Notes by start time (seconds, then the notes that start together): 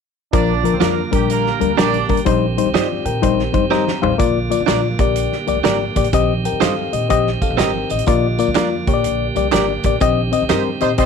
0.33 A#1 D3 F3 A#3 D4 F4 A#4 D5, kick, closed hi-hat
0.64 F3 D4 A#4, closed hi-hat, high conga
0.72 D2 C4 C5, high conga
0.80 F2 F3 A#3 D4 F4 A#4 D5, snare, closed hi-hat
0.98 high conga
1.11 A#1 G3 D4 G4 A#4, kick, closed hi-hat, low conga
1.30 A#3 A#4, closed hi-hat
1.46 snare
1.60 D2 G3 D4 A#4, closed hi-hat, muted conga, high conga
1.77 A#1 G3 D4 G4 A#4 D5, snare, closed hi-hat, muted conga, high conga
1.94 closed hi-hat, high conga
2.09 C2 G3 D4 A#4, kick, open hi-hat, low conga
2.17 closed hi-hat
2.25 A#1 D#3 G3 C4 D#4 C5, kick, closed hi-hat
2.57 G3 D#4 C5, closed hi-hat, high conga
2.66 C2, high conga
2.74 G2 D#4 F4 G4 C5 D5 D#5, snare, closed hi-hat, muted conga
2.93 high conga
3.05 A#2 A#4 G5, closed hi-hat, muted conga, low conga
3.22 A#1 G3 D#4 C5, kick, closed hi-hat, muted conga
3.39 snare
3.53 G1 G3 D#4 C5, kick, closed hi-hat, high conga
3.70 G3 C4 D#4 G4 A#4 C5 D#5 A#5, snare, high conga
3.87 snare, high conga
4.02 A1 G3 D#4 C5 F5, floor tom, muted conga, low conga
4.18 A#1 D3 A#3 F4 D5, kick, closed hi-hat, tambourine, muted conga, low conga
4.50 A#3 F4 D5, closed hi-hat, tambourine, muted conga, high conga
4.60 C2, high conga
4.66 A#1 A#3 D4 F4 A#4 D5, snare, clap, closed hi-hat, tambourine
4.85 high conga
4.99 A#1 A#3 G4 D5, kick, closed hi-hat, tambourine, muted conga, low conga
5.16 closed hi-hat, tambourine, muted conga
5.32 snare
5.47 C2 A#3 G4 D5, closed hi-hat, tambourine, high conga
5.55 D2
5.64 G#1 A#3 D4 G4 A#4 D5, snare, clap, closed hi-hat, tambourine, muted conga, high conga
5.81 high conga
5.96 A1 A#3 G4 D5, kick, closed hi-hat, tambourine, muted conga, low conga
6.04 closed hi-hat
6.13 A#1 D#3 C4 G4 D#5, kick, closed hi-hat, tambourine, muted conga, low conga
6.45 A#4 G5, closed hi-hat, tambourine, high conga
6.52 C2, high conga
6.60 G2 D#4 G4 A4 C5 D#5 F5, snare, clap, closed hi-hat, tambourine
6.78 high conga
6.93 A#2 G4 D#5, closed hi-hat, muted conga, low conga
7.10 A#1 C4 G4 D#5, kick, closed hi-hat, tambourine, muted conga
7.27 snare
7.42 C2 A4 F5, kick, closed hi-hat, tambourine, muted conga, high conga
7.50 A#1
7.57 G#1 C4 G4 A#4 D#5 G5, snare, clap, closed hi-hat, tambourine
7.74 high conga
7.90 A1 G4 D#5, closed hi-hat, tambourine, muted conga, low conga
7.99 closed hi-hat
8.06 A#1 D3 A#3 F4 D5, kick, closed hi-hat, tambourine, low conga
8.38 A#3 F4 D5, closed hi-hat, tambourine, muted conga, high conga
8.47 D2, high conga
8.55 F2 A#3 D4 F4 A#4 D5, snare, clap, closed hi-hat, tambourine
8.73 high conga
8.87 A#2 A#3 G4 C#5, kick, closed hi-hat, muted conga, low conga
8.94 D5
9.04 A#1, closed hi-hat, tambourine, muted conga
9.36 C2 A#3 G4 D5, closed hi-hat, tambourine, muted conga, high conga
9.52 G#1 A#3 D4 G4 A#4 D5, snare, clap, closed hi-hat, tambourine, high conga
9.69 high conga
9.83 A1 A#3 G4 D5, kick, closed hi-hat, tambourine, low conga
10.00 A#1 D#3 C4 G4 D#5, kick, closed hi-hat, tambourine, low conga
10.32 C4 G4 D#5, closed hi-hat, tambourine, high conga
10.42 C2, high conga
10.49 G2 G3 C4 D#4 G4 A#4 C5 D#5, snare, clap, closed hi-hat, tambourine
10.66 high conga
10.80 A#2 G3 C4 D#4 G4 C5 D#5, closed hi-hat, tambourine, low conga
10.98 A#1 D#3 G3 C4 D#4 G4 C5 D#5, kick, closed hi-hat, tambourine, muted conga